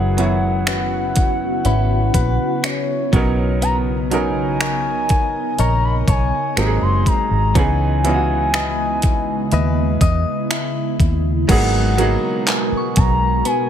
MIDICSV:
0, 0, Header, 1, 9, 480
1, 0, Start_track
1, 0, Key_signature, 5, "minor"
1, 0, Tempo, 983607
1, 1767, Time_signature, 4, 2, 24, 8
1, 6683, End_track
2, 0, Start_track
2, 0, Title_t, "Synth bell"
2, 0, Program_c, 0, 98
2, 6088, Note_on_c, 0, 80, 63
2, 6233, Note_on_c, 0, 85, 51
2, 6683, Note_off_c, 0, 80, 0
2, 6683, Note_off_c, 0, 85, 0
2, 6683, End_track
3, 0, Start_track
3, 0, Title_t, "Soft synth lead"
3, 0, Program_c, 1, 80
3, 0, Note_on_c, 1, 78, 105
3, 1288, Note_on_c, 1, 73, 97
3, 1295, Note_off_c, 1, 78, 0
3, 1764, Note_off_c, 1, 73, 0
3, 1767, Note_on_c, 1, 82, 109
3, 1835, Note_off_c, 1, 82, 0
3, 2009, Note_on_c, 1, 80, 122
3, 2730, Note_on_c, 1, 82, 110
3, 2737, Note_off_c, 1, 80, 0
3, 2848, Note_off_c, 1, 82, 0
3, 2851, Note_on_c, 1, 83, 95
3, 2904, Note_off_c, 1, 83, 0
3, 2970, Note_on_c, 1, 80, 108
3, 3210, Note_on_c, 1, 82, 104
3, 3217, Note_off_c, 1, 80, 0
3, 3325, Note_off_c, 1, 82, 0
3, 3328, Note_on_c, 1, 84, 100
3, 3451, Note_on_c, 1, 82, 107
3, 3458, Note_off_c, 1, 84, 0
3, 3690, Note_on_c, 1, 80, 119
3, 3697, Note_off_c, 1, 82, 0
3, 5128, Note_off_c, 1, 80, 0
3, 5608, Note_on_c, 1, 78, 127
3, 6068, Note_off_c, 1, 78, 0
3, 6330, Note_on_c, 1, 82, 117
3, 6571, Note_on_c, 1, 80, 111
3, 6578, Note_off_c, 1, 82, 0
3, 6683, Note_off_c, 1, 80, 0
3, 6683, End_track
4, 0, Start_track
4, 0, Title_t, "Clean electric guitar"
4, 0, Program_c, 2, 27
4, 0, Note_on_c, 2, 54, 79
4, 0, Note_on_c, 2, 59, 58
4, 0, Note_on_c, 2, 66, 56
4, 84, Note_off_c, 2, 59, 0
4, 86, Note_on_c, 2, 61, 58
4, 325, Note_off_c, 2, 61, 0
4, 327, Note_off_c, 2, 66, 0
4, 327, Note_on_c, 2, 61, 59
4, 329, Note_on_c, 2, 64, 58
4, 332, Note_on_c, 2, 71, 67
4, 802, Note_off_c, 2, 64, 0
4, 803, Note_off_c, 2, 61, 0
4, 805, Note_on_c, 2, 61, 63
4, 808, Note_on_c, 2, 64, 58
4, 809, Note_off_c, 2, 71, 0
4, 811, Note_on_c, 2, 71, 61
4, 1045, Note_off_c, 2, 71, 0
4, 1047, Note_on_c, 2, 71, 68
4, 1284, Note_off_c, 2, 61, 0
4, 1286, Note_on_c, 2, 61, 58
4, 1524, Note_off_c, 2, 61, 0
4, 1526, Note_on_c, 2, 59, 76
4, 1575, Note_off_c, 2, 54, 0
4, 1575, Note_off_c, 2, 64, 0
4, 1761, Note_off_c, 2, 59, 0
4, 1767, Note_on_c, 2, 59, 81
4, 2008, Note_on_c, 2, 63, 59
4, 2246, Note_off_c, 2, 63, 0
4, 2248, Note_on_c, 2, 63, 61
4, 2249, Note_off_c, 2, 71, 0
4, 2251, Note_on_c, 2, 70, 59
4, 2254, Note_on_c, 2, 73, 64
4, 2725, Note_off_c, 2, 70, 0
4, 2726, Note_off_c, 2, 63, 0
4, 2727, Note_on_c, 2, 63, 59
4, 2728, Note_off_c, 2, 73, 0
4, 2730, Note_on_c, 2, 70, 61
4, 2733, Note_on_c, 2, 73, 65
4, 2961, Note_off_c, 2, 73, 0
4, 2967, Note_on_c, 2, 73, 69
4, 3206, Note_on_c, 2, 56, 78
4, 3255, Note_off_c, 2, 59, 0
4, 3255, Note_off_c, 2, 73, 0
4, 3256, Note_off_c, 2, 70, 0
4, 3686, Note_on_c, 2, 61, 84
4, 3701, Note_off_c, 2, 63, 0
4, 3928, Note_on_c, 2, 64, 57
4, 4161, Note_off_c, 2, 64, 0
4, 4167, Note_on_c, 2, 64, 57
4, 4170, Note_on_c, 2, 71, 59
4, 4173, Note_on_c, 2, 75, 63
4, 4642, Note_off_c, 2, 64, 0
4, 4647, Note_on_c, 2, 64, 58
4, 4648, Note_off_c, 2, 71, 0
4, 4650, Note_on_c, 2, 71, 60
4, 4652, Note_off_c, 2, 75, 0
4, 4654, Note_on_c, 2, 75, 66
4, 4886, Note_off_c, 2, 75, 0
4, 4888, Note_on_c, 2, 75, 67
4, 4914, Note_off_c, 2, 56, 0
4, 5122, Note_off_c, 2, 64, 0
4, 5127, Note_on_c, 2, 64, 60
4, 5605, Note_on_c, 2, 56, 85
4, 5606, Note_off_c, 2, 61, 0
4, 5655, Note_off_c, 2, 64, 0
4, 5846, Note_on_c, 2, 59, 60
4, 5849, Note_on_c, 2, 66, 61
4, 5850, Note_off_c, 2, 71, 0
4, 5852, Note_on_c, 2, 70, 71
4, 6085, Note_off_c, 2, 59, 0
4, 6087, Note_on_c, 2, 59, 64
4, 6565, Note_off_c, 2, 59, 0
4, 6567, Note_on_c, 2, 59, 66
4, 6596, Note_off_c, 2, 75, 0
4, 6683, Note_off_c, 2, 56, 0
4, 6683, Note_off_c, 2, 59, 0
4, 6683, Note_off_c, 2, 66, 0
4, 6683, Note_off_c, 2, 70, 0
4, 6683, End_track
5, 0, Start_track
5, 0, Title_t, "Grand piano"
5, 0, Program_c, 3, 0
5, 0, Control_c, 3, 64, 127
5, 0, Note_on_c, 3, 54, 70
5, 0, Note_on_c, 3, 59, 68
5, 0, Note_on_c, 3, 61, 66
5, 0, Note_on_c, 3, 64, 67
5, 0, Note_on_c, 3, 68, 81
5, 83, Note_off_c, 3, 54, 0
5, 83, Note_on_c, 3, 54, 71
5, 87, Note_off_c, 3, 59, 0
5, 87, Note_on_c, 3, 59, 68
5, 91, Note_off_c, 3, 61, 0
5, 91, Note_on_c, 3, 61, 66
5, 95, Note_off_c, 3, 64, 0
5, 95, Note_on_c, 3, 64, 65
5, 100, Note_on_c, 3, 66, 78
5, 837, Note_off_c, 3, 54, 0
5, 839, Note_off_c, 3, 59, 0
5, 841, Note_off_c, 3, 61, 0
5, 843, Note_off_c, 3, 64, 0
5, 845, Note_off_c, 3, 66, 0
5, 1524, Note_on_c, 3, 54, 76
5, 1529, Note_on_c, 3, 59, 69
5, 1532, Control_c, 3, 64, 0
5, 1533, Note_on_c, 3, 61, 74
5, 1534, Note_off_c, 3, 68, 0
5, 1537, Note_on_c, 3, 63, 69
5, 1542, Note_on_c, 3, 70, 81
5, 1625, Control_c, 3, 64, 127
5, 1909, Note_off_c, 3, 54, 0
5, 1912, Note_off_c, 3, 59, 0
5, 1914, Note_off_c, 3, 61, 0
5, 1916, Note_off_c, 3, 63, 0
5, 1918, Note_off_c, 3, 70, 0
5, 2003, Note_on_c, 3, 54, 70
5, 2007, Note_on_c, 3, 59, 63
5, 2011, Note_on_c, 3, 61, 66
5, 2015, Note_on_c, 3, 63, 66
5, 2020, Note_on_c, 3, 70, 80
5, 2757, Note_off_c, 3, 54, 0
5, 2759, Note_off_c, 3, 59, 0
5, 2761, Note_off_c, 3, 61, 0
5, 2763, Note_off_c, 3, 63, 0
5, 2766, Note_off_c, 3, 70, 0
5, 3203, Note_on_c, 3, 54, 75
5, 3207, Note_on_c, 3, 58, 71
5, 3211, Note_on_c, 3, 60, 67
5, 3214, Control_c, 3, 64, 0
5, 3215, Note_on_c, 3, 63, 69
5, 3220, Note_on_c, 3, 67, 66
5, 3245, Note_off_c, 3, 67, 0
5, 3252, Note_on_c, 3, 68, 83
5, 3301, Control_c, 3, 64, 127
5, 3589, Note_off_c, 3, 54, 0
5, 3591, Note_off_c, 3, 58, 0
5, 3593, Note_off_c, 3, 60, 0
5, 3595, Note_off_c, 3, 63, 0
5, 3613, Note_off_c, 3, 68, 0
5, 3684, Note_on_c, 3, 52, 71
5, 3688, Note_on_c, 3, 59, 70
5, 3692, Note_on_c, 3, 61, 65
5, 3693, Control_c, 3, 64, 0
5, 3697, Note_on_c, 3, 63, 65
5, 3701, Note_on_c, 3, 68, 80
5, 3791, Control_c, 3, 64, 127
5, 3873, Note_off_c, 3, 52, 0
5, 3875, Note_off_c, 3, 59, 0
5, 3877, Note_off_c, 3, 61, 0
5, 3880, Note_off_c, 3, 63, 0
5, 3882, Note_off_c, 3, 68, 0
5, 3924, Note_on_c, 3, 52, 75
5, 3929, Note_on_c, 3, 59, 65
5, 3933, Note_on_c, 3, 61, 66
5, 3937, Note_on_c, 3, 63, 66
5, 3942, Note_on_c, 3, 65, 66
5, 3966, Note_off_c, 3, 65, 0
5, 3973, Note_on_c, 3, 66, 84
5, 4677, Note_off_c, 3, 52, 0
5, 4680, Note_off_c, 3, 59, 0
5, 4682, Note_off_c, 3, 61, 0
5, 4684, Note_off_c, 3, 63, 0
5, 4702, Note_off_c, 3, 66, 0
5, 5602, Note_on_c, 3, 54, 81
5, 5607, Note_on_c, 3, 58, 72
5, 5611, Note_on_c, 3, 59, 73
5, 5614, Control_c, 3, 64, 0
5, 5615, Note_on_c, 3, 63, 73
5, 5619, Note_on_c, 3, 68, 87
5, 5694, Control_c, 3, 64, 127
5, 5792, Note_off_c, 3, 54, 0
5, 5795, Note_off_c, 3, 58, 0
5, 5797, Note_off_c, 3, 59, 0
5, 5799, Note_off_c, 3, 63, 0
5, 5801, Note_off_c, 3, 68, 0
5, 5843, Note_on_c, 3, 54, 78
5, 5846, Note_on_c, 3, 58, 69
5, 5851, Note_on_c, 3, 59, 69
5, 5855, Note_on_c, 3, 63, 73
5, 5860, Note_on_c, 3, 68, 84
5, 6597, Note_off_c, 3, 54, 0
5, 6598, Note_off_c, 3, 58, 0
5, 6601, Note_off_c, 3, 59, 0
5, 6603, Note_off_c, 3, 63, 0
5, 6605, Note_off_c, 3, 68, 0
5, 6683, End_track
6, 0, Start_track
6, 0, Title_t, "Ambient pad"
6, 0, Program_c, 4, 92
6, 0, Note_on_c, 4, 49, 82
6, 0, Note_on_c, 4, 59, 74
6, 0, Note_on_c, 4, 64, 74
6, 0, Note_on_c, 4, 66, 83
6, 1509, Note_off_c, 4, 64, 0
6, 1509, Note_off_c, 4, 66, 0
6, 1526, Note_on_c, 4, 70, 68
6, 1528, Note_on_c, 4, 75, 87
6, 3186, Note_off_c, 4, 49, 0
6, 3186, Note_off_c, 4, 59, 0
6, 3190, Note_off_c, 4, 70, 0
6, 3205, Note_on_c, 4, 48, 78
6, 3205, Note_on_c, 4, 56, 71
6, 3206, Note_on_c, 4, 54, 72
6, 3681, Note_off_c, 4, 48, 0
6, 3681, Note_off_c, 4, 54, 0
6, 3681, Note_off_c, 4, 56, 0
6, 3687, Note_on_c, 4, 56, 74
6, 3687, Note_on_c, 4, 59, 70
6, 3688, Note_on_c, 4, 49, 81
6, 4628, Note_off_c, 4, 75, 0
6, 4646, Note_on_c, 4, 64, 82
6, 5587, Note_off_c, 4, 59, 0
6, 5588, Note_off_c, 4, 49, 0
6, 5588, Note_off_c, 4, 56, 0
6, 5596, Note_off_c, 4, 64, 0
6, 5606, Note_on_c, 4, 47, 82
6, 5606, Note_on_c, 4, 56, 73
6, 5606, Note_on_c, 4, 66, 96
6, 5606, Note_on_c, 4, 70, 76
6, 6556, Note_off_c, 4, 66, 0
6, 6566, Note_on_c, 4, 68, 87
6, 6683, Note_off_c, 4, 47, 0
6, 6683, Note_off_c, 4, 56, 0
6, 6683, Note_off_c, 4, 68, 0
6, 6683, Note_off_c, 4, 70, 0
6, 6683, End_track
7, 0, Start_track
7, 0, Title_t, "Fingered electric bass"
7, 0, Program_c, 5, 33
7, 0, Note_on_c, 5, 30, 99
7, 787, Note_off_c, 5, 30, 0
7, 806, Note_on_c, 5, 32, 93
7, 1021, Note_off_c, 5, 32, 0
7, 1045, Note_on_c, 5, 34, 92
7, 1153, Note_off_c, 5, 34, 0
7, 1526, Note_on_c, 5, 35, 107
7, 2601, Note_off_c, 5, 35, 0
7, 2727, Note_on_c, 5, 34, 93
7, 2942, Note_off_c, 5, 34, 0
7, 2965, Note_on_c, 5, 35, 79
7, 3073, Note_off_c, 5, 35, 0
7, 3206, Note_on_c, 5, 32, 100
7, 3313, Note_off_c, 5, 32, 0
7, 3327, Note_on_c, 5, 30, 79
7, 3434, Note_off_c, 5, 30, 0
7, 3567, Note_on_c, 5, 32, 81
7, 3674, Note_off_c, 5, 32, 0
7, 3687, Note_on_c, 5, 37, 107
7, 4627, Note_off_c, 5, 37, 0
7, 4647, Note_on_c, 5, 39, 85
7, 4861, Note_off_c, 5, 39, 0
7, 4885, Note_on_c, 5, 40, 81
7, 4993, Note_off_c, 5, 40, 0
7, 5366, Note_on_c, 5, 39, 96
7, 5581, Note_off_c, 5, 39, 0
7, 5607, Note_on_c, 5, 32, 108
7, 5929, Note_off_c, 5, 32, 0
7, 6329, Note_on_c, 5, 35, 86
7, 6543, Note_off_c, 5, 35, 0
7, 6683, End_track
8, 0, Start_track
8, 0, Title_t, "Muted fingered electric bass strokes"
8, 6207, Note_on_c, 9, 29, 48
8, 6256, Note_off_c, 9, 29, 0
8, 6683, End_track
9, 0, Start_track
9, 0, Title_t, "Drums"
9, 88, Note_on_c, 9, 42, 65
9, 137, Note_off_c, 9, 42, 0
9, 326, Note_on_c, 9, 26, 109
9, 327, Note_on_c, 9, 42, 65
9, 375, Note_off_c, 9, 26, 0
9, 375, Note_off_c, 9, 42, 0
9, 564, Note_on_c, 9, 42, 77
9, 569, Note_on_c, 9, 36, 85
9, 613, Note_off_c, 9, 42, 0
9, 618, Note_off_c, 9, 36, 0
9, 804, Note_on_c, 9, 42, 65
9, 853, Note_off_c, 9, 42, 0
9, 1045, Note_on_c, 9, 36, 83
9, 1046, Note_on_c, 9, 42, 72
9, 1093, Note_off_c, 9, 36, 0
9, 1095, Note_off_c, 9, 42, 0
9, 1287, Note_on_c, 9, 26, 111
9, 1288, Note_on_c, 9, 42, 78
9, 1336, Note_off_c, 9, 26, 0
9, 1337, Note_off_c, 9, 42, 0
9, 1527, Note_on_c, 9, 36, 98
9, 1529, Note_on_c, 9, 42, 53
9, 1575, Note_off_c, 9, 36, 0
9, 1578, Note_off_c, 9, 42, 0
9, 1768, Note_on_c, 9, 42, 67
9, 1816, Note_off_c, 9, 42, 0
9, 2008, Note_on_c, 9, 42, 67
9, 2057, Note_off_c, 9, 42, 0
9, 2247, Note_on_c, 9, 26, 113
9, 2248, Note_on_c, 9, 42, 64
9, 2296, Note_off_c, 9, 26, 0
9, 2296, Note_off_c, 9, 42, 0
9, 2485, Note_on_c, 9, 42, 77
9, 2489, Note_on_c, 9, 36, 84
9, 2533, Note_off_c, 9, 42, 0
9, 2538, Note_off_c, 9, 36, 0
9, 2726, Note_on_c, 9, 42, 68
9, 2774, Note_off_c, 9, 42, 0
9, 2965, Note_on_c, 9, 36, 88
9, 2967, Note_on_c, 9, 42, 72
9, 3014, Note_off_c, 9, 36, 0
9, 3016, Note_off_c, 9, 42, 0
9, 3207, Note_on_c, 9, 26, 109
9, 3208, Note_on_c, 9, 42, 73
9, 3256, Note_off_c, 9, 26, 0
9, 3257, Note_off_c, 9, 42, 0
9, 3446, Note_on_c, 9, 36, 77
9, 3449, Note_on_c, 9, 42, 53
9, 3495, Note_off_c, 9, 36, 0
9, 3497, Note_off_c, 9, 42, 0
9, 3686, Note_on_c, 9, 36, 105
9, 3687, Note_on_c, 9, 42, 69
9, 3735, Note_off_c, 9, 36, 0
9, 3735, Note_off_c, 9, 42, 0
9, 3927, Note_on_c, 9, 42, 67
9, 3975, Note_off_c, 9, 42, 0
9, 4167, Note_on_c, 9, 26, 109
9, 4167, Note_on_c, 9, 42, 64
9, 4215, Note_off_c, 9, 26, 0
9, 4216, Note_off_c, 9, 42, 0
9, 4403, Note_on_c, 9, 42, 78
9, 4408, Note_on_c, 9, 36, 89
9, 4452, Note_off_c, 9, 42, 0
9, 4457, Note_off_c, 9, 36, 0
9, 4643, Note_on_c, 9, 42, 68
9, 4692, Note_off_c, 9, 42, 0
9, 4884, Note_on_c, 9, 36, 86
9, 4886, Note_on_c, 9, 42, 73
9, 4933, Note_off_c, 9, 36, 0
9, 4934, Note_off_c, 9, 42, 0
9, 5127, Note_on_c, 9, 26, 106
9, 5128, Note_on_c, 9, 42, 79
9, 5176, Note_off_c, 9, 26, 0
9, 5177, Note_off_c, 9, 42, 0
9, 5366, Note_on_c, 9, 36, 79
9, 5369, Note_on_c, 9, 42, 53
9, 5415, Note_off_c, 9, 36, 0
9, 5418, Note_off_c, 9, 42, 0
9, 5606, Note_on_c, 9, 36, 112
9, 5607, Note_on_c, 9, 49, 99
9, 5608, Note_on_c, 9, 42, 68
9, 5655, Note_off_c, 9, 36, 0
9, 5656, Note_off_c, 9, 49, 0
9, 5657, Note_off_c, 9, 42, 0
9, 5848, Note_on_c, 9, 42, 69
9, 5897, Note_off_c, 9, 42, 0
9, 6088, Note_on_c, 9, 39, 120
9, 6088, Note_on_c, 9, 42, 69
9, 6137, Note_off_c, 9, 39, 0
9, 6137, Note_off_c, 9, 42, 0
9, 6324, Note_on_c, 9, 42, 83
9, 6329, Note_on_c, 9, 36, 97
9, 6373, Note_off_c, 9, 42, 0
9, 6378, Note_off_c, 9, 36, 0
9, 6565, Note_on_c, 9, 42, 69
9, 6614, Note_off_c, 9, 42, 0
9, 6683, End_track
0, 0, End_of_file